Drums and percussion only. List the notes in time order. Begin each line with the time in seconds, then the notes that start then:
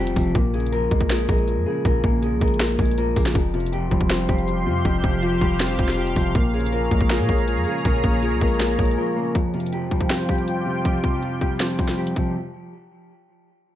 0.07 closed hi-hat
0.16 kick, open hi-hat
0.35 kick, closed hi-hat
0.54 closed hi-hat
0.60 closed hi-hat
0.66 closed hi-hat
0.73 closed hi-hat
0.91 kick, closed hi-hat
1.01 kick
1.10 snare, closed hi-hat
1.29 kick, closed hi-hat
1.38 closed hi-hat
1.48 closed hi-hat
1.85 kick, closed hi-hat
2.04 kick
2.23 closed hi-hat
2.41 kick, closed hi-hat
2.48 closed hi-hat
2.54 closed hi-hat
2.60 snare, closed hi-hat
2.79 kick, closed hi-hat
2.85 closed hi-hat
2.91 closed hi-hat
2.98 closed hi-hat
3.16 kick, open hi-hat
3.26 snare
3.35 kick, closed hi-hat
3.54 closed hi-hat
3.60 closed hi-hat
3.66 closed hi-hat
3.73 closed hi-hat
3.91 kick, closed hi-hat
4.01 kick
4.10 snare, closed hi-hat
4.29 kick, closed hi-hat
4.38 closed hi-hat
4.48 closed hi-hat
4.85 kick, closed hi-hat
5.04 kick
5.23 closed hi-hat
5.41 kick, closed hi-hat
5.60 snare, closed hi-hat
5.79 kick, closed hi-hat
5.88 snare
5.98 closed hi-hat
6.07 closed hi-hat
6.16 kick, open hi-hat
6.35 kick, closed hi-hat
6.54 closed hi-hat
6.60 closed hi-hat
6.66 closed hi-hat
6.73 closed hi-hat
6.91 kick, closed hi-hat
7.01 kick
7.10 snare, closed hi-hat
7.29 kick, closed hi-hat
7.38 closed hi-hat
7.48 closed hi-hat
7.85 kick, closed hi-hat
8.04 kick
8.23 closed hi-hat
8.41 kick, closed hi-hat
8.48 closed hi-hat
8.54 closed hi-hat
8.60 snare, closed hi-hat
8.79 kick, closed hi-hat
8.85 closed hi-hat
8.91 closed hi-hat
9.35 kick, closed hi-hat
9.54 closed hi-hat
9.60 closed hi-hat
9.66 closed hi-hat
9.73 closed hi-hat
9.91 kick, closed hi-hat
10.01 kick
10.10 snare, closed hi-hat
10.29 kick, closed hi-hat
10.38 closed hi-hat
10.48 closed hi-hat
10.85 kick, closed hi-hat
11.04 kick
11.23 closed hi-hat
11.41 kick, closed hi-hat
11.60 snare, closed hi-hat
11.79 kick, closed hi-hat
11.88 snare
11.98 closed hi-hat
12.07 closed hi-hat
12.16 kick, closed hi-hat